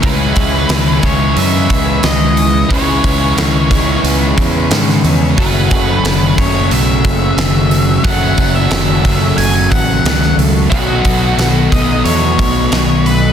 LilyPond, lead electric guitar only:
\new Staff \with { instrumentName = "Lead electric guitar" } { \time 4/4 \key cis \minor \tempo 4 = 90 b'4. cis''8 e''4 dis''4 | cis''2 r2 | b'4. cis''8 e''2 | fis''8. e''4~ e''16 gis''8 fis''4 r8 |
fis'4. dis''8 cis''4. b'8 | }